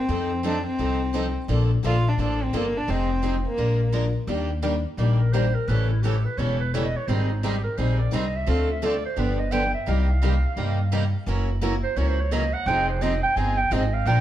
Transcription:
Already playing: violin C4
0.08 upright bass F2, steel-string acoustic guitar F3 C4 D#4 A4
0.43 steel-string acoustic guitar F3 C4 D#4 A4, violin D4
0.67 violin C4
0.78 upright bass C2, steel-string acoustic guitar F3 C4 D#4 A4
1.13 steel-string acoustic guitar F3 C4 D#4 A4
1.48 upright bass A#1, steel-string acoustic guitar D3 F3 A#3 D4 A4
1.83 upright bass A#1, steel-string acoustic guitar D3 F3 A#3 D4 A4, violin F4
2.08 violin D4
2.17 upright bass A1, steel-string acoustic guitar D3 F3 A#3 D4 A4
2.22 violin D4
2.43 violin C4
2.53 upright bass G1, steel-string acoustic guitar D3 F3 A#3 D4 A4, violin A#3
2.77 violin D4
2.88 upright bass F1, steel-string acoustic guitar F3 C4 D#4 G#4, violin C4
3.22 steel-string acoustic guitar F3 C4 D#4 G#4
3.48 violin A#3
3.58 upright bass A#1, steel-string acoustic guitar F3 G#3 D4 F4 A#4
3.92 steel-string acoustic guitar F3 G#3 D4 F4 A#4
4.27 upright bass D#2, steel-string acoustic guitar D#3 G3 A#3 D4 G4
4.63 steel-string acoustic guitar D#3 G3 A#3 D4 G4
4.97 upright bass A#1, steel-string acoustic guitar D#3 G3 A#3 D4 G4, clarinet G4
5.18 clarinet A#4
5.32 steel-string acoustic guitar D#3 G3 A#3 D4 G4, clarinet C5
5.55 clarinet A#4
5.68 upright bass A1, steel-string acoustic guitar C#3 E3 G3 A3 C#4 E4 G4 A4, clarinet B4
5.90 clarinet E4
6.02 steel-string acoustic guitar C#3 E3 G3 A3 C#4 E4 G4 A4, clarinet G4
6.25 clarinet B4
6.37 upright bass E1, steel-string acoustic guitar C#3 E3 G3 A3 C#4 E4 G4 A4, clarinet C#5
6.60 clarinet B4
6.74 steel-string acoustic guitar C#3 E3 G3 A3 C#4 E4 G4 A4, clarinet C#5
6.84 clarinet D#5
6.97 clarinet C#5
7.07 upright bass G#1, steel-string acoustic guitar D#3 G3 C4 D#4 G#4, clarinet C5
7.29 clarinet D#4
7.43 steel-string acoustic guitar D#3 G3 C4 D#4 G#4, clarinet G4
7.64 clarinet A#4
7.77 upright bass A#1, steel-string acoustic guitar D#3 G3 C4 D#4 G#4, clarinet C5
7.99 clarinet D5
8.11 upright bass C2, steel-string acoustic guitar D#3 G3 C4 D#4 G#4, clarinet D#5
8.36 clarinet E5
8.47 upright bass D2, steel-string acoustic guitar D3 A3 C4 F4 A4, clarinet F5
8.71 clarinet E5
8.82 steel-string acoustic guitar D3 A3 C4 F4 A4, clarinet D5
9.06 clarinet C5
9.17 upright bass G1, steel-string acoustic guitar D3 F3 B3 D4 G4, clarinet B4
9.39 clarinet D#5
9.52 steel-string acoustic guitar D3 F3 B3 D4 G4, clarinet G5
9.74 clarinet E5
9.87 upright bass C2, steel-string acoustic guitar C3 G3 A#3 D#4 G4, clarinet F5
10.23 steel-string acoustic guitar C3 G3 A#3 D#4 G4
10.56 upright bass G2, steel-string acoustic guitar C3 G3 A#3 D#4 G4
10.92 steel-string acoustic guitar C3 G3 A#3 D#4 G4
11.26 upright bass F#1, steel-string acoustic guitar C#3 E3 F#3 A#3 C#4 E4 F#4 A#4
11.61 steel-string acoustic guitar C#3 E3 F#3 A#3 C#4 E4 F#4 A#4
11.84 clarinet C5
11.96 upright bass C#2, steel-string acoustic guitar C#3 E3 F#3 A#3 C#4 E4 F#4 A#4, clarinet C#5
12.08 clarinet C5
12.20 clarinet C#5
12.31 steel-string acoustic guitar C#3 E3 F#3 A#3 C#4 E4 F#4 A#4, clarinet D#5
12.54 clarinet F#5
12.66 upright bass F1, steel-string acoustic guitar F3 C4 D#4 G#4, clarinet G5
12.89 clarinet C5
13.01 steel-string acoustic guitar F3 C4 D#4 G#4, clarinet D#5
13.23 clarinet G5
13.36 upright bass G1, steel-string acoustic guitar F3 C4 D#4 G#4, clarinet G#5
13.57 clarinet G5
13.71 upright bass G#1, steel-string acoustic guitar F3 C4 D#4 G#4, clarinet D#5
13.93 clarinet F5
14.05 upright bass A#1, steel-string acoustic guitar F3 G#3 D4 F4 A#4, clarinet G5

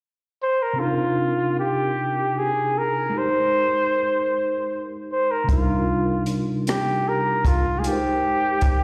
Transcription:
0.43 flugelhorn C5
0.63 flugelhorn A#4
0.73 tine electric piano C3 C4
0.78 tine electric piano D4 D#4, flugelhorn F4
0.83 tine electric piano F4 A#4
1.60 flugelhorn G4
2.38 flugelhorn G#4
2.78 flugelhorn A#4
3.10 tine electric piano G#3 D#4
3.16 tine electric piano G4 A#4, flugelhorn C5
3.22 tine electric piano C5
5.11 flugelhorn C5
5.31 flugelhorn A#4
5.44 tine electric piano C3 G3
5.49 tine electric piano D4 D#4, flugelhorn F4, kick, closed hi-hat
5.53 tine electric piano F4 A#4
6.26 closed hi-hat
6.67 flugelhorn G4, cross-stick, closed hi-hat
7.08 flugelhorn A#4
7.45 flugelhorn F4, kick, closed hi-hat
7.79 tine electric piano G#3, flugelhorn G#4
7.83 tine electric piano D#4 G5, flugelhorn G4, closed hi-hat
7.89 tine electric piano A#4 C5
8.61 kick, closed hi-hat

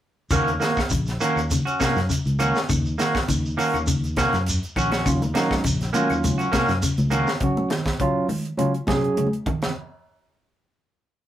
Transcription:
0.30 fingered electric bass D#2, clean electric guitar C#3 A#3 C#4 F#4, kick, closed hi-hat, claves, shekere
0.47 closed hi-hat, shekere
0.60 clean electric guitar D#3 A#3 F#4, snare, closed hi-hat, shekere
0.76 kick, snare, claves, shekere
0.90 fingered electric bass A#1, clean electric guitar C#3, kick, closed hi-hat, shekere
1.06 snare, closed hi-hat, shekere
1.20 clean electric guitar D#3 A#3 C#4 F#4, closed hi-hat, shekere
1.36 fingered electric bass D#2, closed hi-hat, claves, shekere
1.51 clean electric guitar C#3, closed hi-hat, shekere
1.65 clean electric guitar C#4 F#4, closed hi-hat, shekere
1.80 clean electric guitar C3 A#3 C#4 F#4, kick, snare, closed hi-hat, claves, shekere
1.96 fingered electric bass F#2, snare, closed hi-hat, shekere
2.10 clean electric guitar C#3, closed hi-hat, shekere
2.25 fingered electric bass C#2, closed hi-hat, shekere
2.39 clean electric guitar D#3 A#3 C#4 F#4, closed hi-hat, claves, shekere
2.55 snare, shekere
2.69 fingered electric bass D#2, clean electric guitar C#3, kick, closed hi-hat, claves, shekere
2.85 shekere
2.98 clean electric guitar D#3 A#3 F#4, snare, closed hi-hat, shekere
3.15 kick, snare, closed hi-hat, claves, shekere
3.28 fingered electric bass D#2, clean electric guitar C#3, kick, closed hi-hat, shekere
3.46 shekere
3.57 clean electric guitar D#3 A#3 C#4 F#4, open hi-hat, shekere
3.74 fingered electric bass D#2, closed hi-hat, claves, shekere
3.87 clean electric guitar C#3, closed hi-hat, shekere
4.04 closed hi-hat, shekere
4.16 clean electric guitar C3 A#3 C#4 F#4, kick, snare, closed hi-hat, claves, shekere
4.33 fingered electric bass F#2, snare, closed hi-hat, shekere
4.46 closed hi-hat, shekere
4.63 closed hi-hat, shekere
4.76 fingered electric bass A#1, clean electric guitar D#3 C#4 F#4, kick, closed hi-hat, claves, shekere
4.92 clean electric guitar C#4 F#4, snare, closed hi-hat, shekere
5.06 fingered electric bass D#2, clean electric guitar C#3, tine electric piano F#3 C#4 F4, kick, closed hi-hat, claves, shekere
5.22 closed hi-hat, high conga, shekere
5.34 clean electric guitar D#3 A#3 F#4, tine electric piano F#3 C#4 D#4, snare, closed hi-hat, shekere
5.51 kick, snare, high conga, claves, shekere
5.64 fingered electric bass A#1, clean electric guitar C#3, kick, closed hi-hat, shekere
5.81 snare, closed hi-hat, shekere
5.93 clean electric guitar D#3 A#3 C#4 F#4, tine electric piano F#3 C#4 F4, closed hi-hat, high conga, shekere
6.10 fingered electric bass D#2, closed hi-hat, claves, shekere
6.24 clean electric guitar C#3, closed hi-hat, high conga, shekere
6.38 clean electric guitar C#4 F#4, closed hi-hat, shekere
6.52 clean electric guitar C3 A#3 C#4 F#4, kick, snare, closed hi-hat, high conga, claves, shekere
6.68 fingered electric bass F#2, snare, closed hi-hat, shekere
6.82 clean electric guitar C#3, closed hi-hat, shekere
6.98 fingered electric bass C#2, closed hi-hat, high conga, shekere
7.10 clean electric guitar D#3 A#3 C#4 F#4, closed hi-hat, claves, shekere
7.27 snare, shekere
7.40 clean electric guitar C#3, tine electric piano F#3 C#4 F#4, kick, closed hi-hat
7.57 high conga
7.70 clean electric guitar D#3, snare, closed hi-hat
7.85 kick, snare, closed hi-hat
8.00 clean electric guitar C#3, tine electric piano F#3 C#4 F4, kick, closed hi-hat
8.29 clean electric guitar D#3, open hi-hat, high conga
8.45 closed hi-hat
8.57 clean electric guitar C#3, tine electric piano F#3 C#4 F4, closed hi-hat, high conga
8.74 closed hi-hat
8.87 clean electric guitar C3, tine electric piano F#3 C#4 G#4, kick, snare, closed hi-hat, high conga
9.04 closed hi-hat
9.17 clean electric guitar C#3, closed hi-hat, high conga
9.27 high conga
9.33 closed hi-hat
9.46 clean electric guitar D#3, kick, closed hi-hat, low conga
9.62 snare, closed hi-hat, low conga

